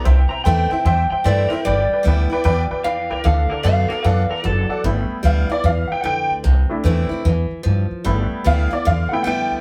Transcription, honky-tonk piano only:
X:1
M:4/4
L:1/8
Q:"Swing" 1/4=150
K:Gmix
V:1 name="Honky-tonk piano"
[ceg] [ceg] [ceg] [ceg] [ceg] [ceg] [ceg] [ceg] | [Bdg] [Bdg] [Bdg] [Bdg] [Bdg] [Bdg] [Bdg] [Bdg] | [Ad^f] [Adf] [Adf] [Adf] [Adf] [Adf] [Adf] [Adf] | z2 f d f [^fg] [fg] z |
z8 | z2 f d f [^fg] [fg] z |]
V:2 name="Honky-tonk piano"
z8 | z8 | z8 | [A,B,E] z6 z |
z [A,DE]3 z4 | [A,B,E]3 z2 [A,B,E] z2 |]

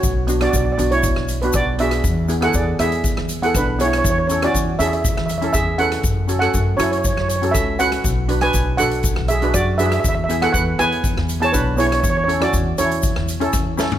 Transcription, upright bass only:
X:1
M:4/4
L:1/16
Q:1/4=120
K:A
V:1 name="Upright bass" clef=bass
B,,,4 B,,,2 B,,,3 B,,,3 B,,,4 | E,,4 E,,2 E,,3 E,,3 B,,,4 | E,,4 E,,2 E,,3 E,,3 E,,4 | F,,4 F,,2 F,,3 F,,3 C,,4 |
B,,,4 B,,,2 B,,,3 B,,,3 F,,4 | E,,4 E,,2 E,,3 E,,3 B,,,4 | E,,4 E,,2 E,,3 E,,3 E,,4 |]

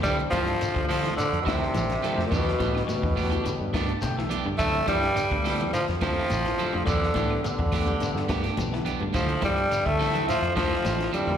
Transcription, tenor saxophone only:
X:1
M:4/4
L:1/16
Q:1/4=105
K:Ddor
V:1 name="Tenor saxophone" clef=bass
G,2 F,4 F,2 D,2 C,6 | B,,4 B,,8 z4 | A,2 G,6 F,2 F,6 | D,4 D,8 z4 |
F,2 G,3 A,3 F,2 F,4 G,2 |]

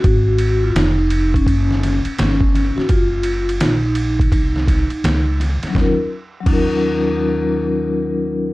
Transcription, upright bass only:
X:1
M:4/4
L:1/16
Q:"Swing 16ths" 1/4=84
K:Ebm
V:1 name="Upright bass" clef=bass
A,,,4 F,,,4 G,,,3 z =G,,,3 z | G,,,4 B,,,4 =C,,3 z D,,3 z | E,,2 z2 E,,12 |]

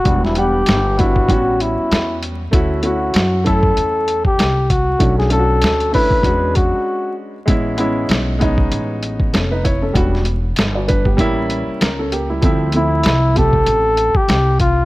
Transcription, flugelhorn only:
X:1
M:4/4
L:1/16
Q:"Swing 16ths" 1/4=97
K:Dmix
V:1 name="Flugelhorn"
F E G4 F4 E4 z2 | z2 F4 A4- A G3 F2- | F ^G A4 B4 F4 z2 | z16 |
z16 | z2 E4 A4- A G3 =F2 |]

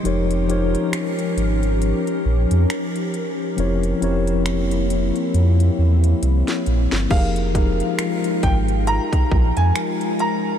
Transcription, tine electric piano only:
X:1
M:4/4
L:1/8
Q:"Swing 16ths" 1/4=68
K:Fm
V:1 name="Tine electric piano"
[F,EGBd] [F,EGBd]3 z4 | [F,C=EGBd] [F,CEGBd]3 z4 | [F,EGAB] [F,EGAB]3 z4 |]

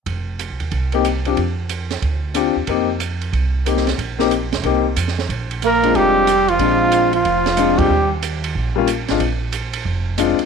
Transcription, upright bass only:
X:1
M:4/4
L:1/8
Q:"Swing" 1/4=184
K:Bbmix
V:1 name="Upright bass" clef=bass
F,,,2- (3F,,, C,, E,, C,,4 | F,,4 D,,3 E,, | F,,4 C,,4 | B,,,3 =E,,, C,,2 F,,2 |
B,,,4 F,,,4 | B,,,4 F,,,3 =E,, | E,,4 B,,,3 A,,, | B,,,4 F,,,3 z |]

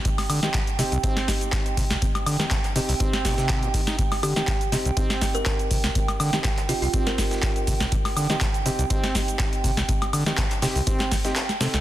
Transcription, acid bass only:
X:1
M:4/4
L:1/16
Q:"Swing 16ths" 1/4=122
K:Cm
V:1 name="Acid bass" clef=bass
C, z D, E, C, z C, C,, C2 C, z3 C, C,, | C, z D, E, C, z C, C,, C2 B,, C,2 B,, E, E | C, z D, E, C, z C, C,, C2 C, z3 C, C,, | C, z D, E, C, z C, C,, C2 C, z3 C, C,, |
C, z D, E, C, z C, C,, C2 C, z3 C, C,, | C, z D, E, C, z C, C,, C2 C, z3 C, C,, |]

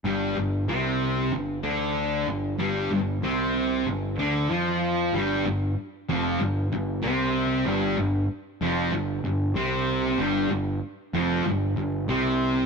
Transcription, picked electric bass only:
X:1
M:4/4
L:1/8
Q:1/4=95
K:Flyd
V:1 name="Picked electric bass" clef=bass
G,,, G,,, C,,2 G,,, D,,2 G,,, | G,,, G,,, C,,2 G,,, D,, F,,2 | G,,, G,,, z F,,, G,,, G,,, C,,2 | G,,, G,,, z F,,, G,,, G,,, C,,2 |
G,,, G,,, z F,,, G,,, G,,, C,,2 |]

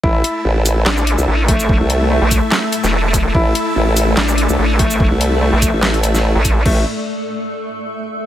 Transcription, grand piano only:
X:1
M:4/4
L:1/8
Q:"Swing 16ths" 1/4=145
K:Cmix
V:1 name="Grand piano"
E4 D3 A,- | A,2 A,6 | E4 D3 A,- | A,2 A,6 |
A, z6 z |]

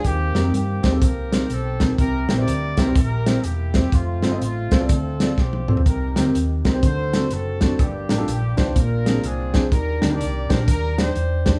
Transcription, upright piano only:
X:1
M:4/4
L:1/16
Q:"Swing" 1/4=124
K:Eblyd
V:1 name="Upright piano"
z2 [CEGB] [CEGB] z2 [CEGc] [CEGA] z2 [CEGc] z3 [CEGB] z | z2 [C=EGB] [CEGc] z2 [CEGB] [CEGc] z2 [CEGc] z3 [CEGc] z | z2 [CFAc] [CFAe] z2 [CFAc] [CFAd] z2 [CFAd] z3 [CFAc] z | z2 [CEGB] [CEGB] z2 [CEGB] [CEGc] z2 [CD^FA] z3 [CDFc] z |
z2 [DFGB] [DFGA] z2 [DFGc] [DFGc] z2 [CD_AB] z3 [CDAc] z | z2 [DEGB] [DEGB] z2 [DEGc] [DEGB] z2 [DEGc] z3 [DEGc] z |]
V:2 name="Upright piano" clef=bass
E,6 z8 z2 | C,6 z8 z2 | z16 | C,6 z2 D,6 z2 |
G,,6 z2 B,,6 z2 | E,6 z8 z2 |]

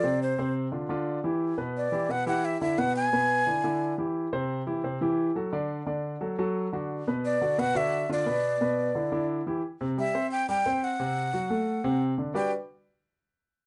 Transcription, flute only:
X:1
M:4/4
L:1/8
Q:1/4=175
K:G
V:1 name="Flute"
d c2 z4 z | z2 d2 f f e e | f _a6 z | z8 |
z8 | z2 d2 f e2 d- | d6 z2 | z2 e2 g g2 f- |
f6 z2 | g z6 z |]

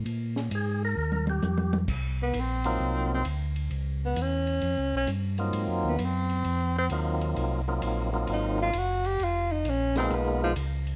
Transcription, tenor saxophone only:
X:1
M:4/4
L:1/8
Q:"Swing" 1/4=131
K:Abmix
V:1 name="Tenor saxophone"
z8 | z _C =C3 C z2 | z _C D3 D z2 | z _C =C3 C z2 |
z4 E F G =G | F E D C _C F, z2 |]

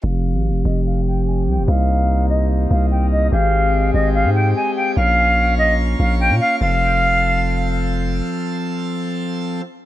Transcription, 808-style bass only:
X:1
M:4/4
L:1/16
Q:1/4=146
K:Fm
V:1 name="808-style bass" clef=bass
F,,,3 A,,,3/2 F,,,3/2 F,,,8 C,, F,,, | C,,8- C,,2 C,,6 | A,,,6 A,,,3 A,,3 z4 | B,,,8- B,,,2 B,,,3 B,, z2 |
F,,,16 | z16 |]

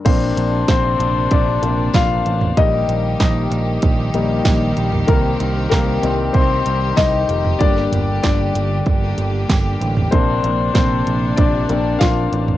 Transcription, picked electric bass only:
X:1
M:4/4
L:1/8
Q:1/4=95
K:Bb
V:1 name="Picked electric bass" clef=bass
B,,, B,,, B,,, B,,, B,,, B,,, B,,, A,,, | B,,, B,,, B,,, B,,, B,,, B,,, B,,, B,,, | C,, C,, C,, C,, C,, C,, C,, F,,, | G,,, G,,, G,,, G,,, G,,, G,,, G,,, A,,, |
B,,, B,,, B,,, B,,, B,,, B,,, B,,, A,,, |]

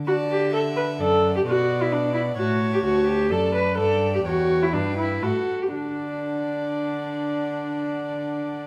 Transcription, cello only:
X:1
M:3/4
L:1/8
Q:1/4=125
K:D
V:1 name="Cello" clef=bass
D,4 F,,2 | B,,4 A,,2 | D,,2 F,,2 G,,2 | E,,2 G,,2 A,, z |
D,6- | D,6 |]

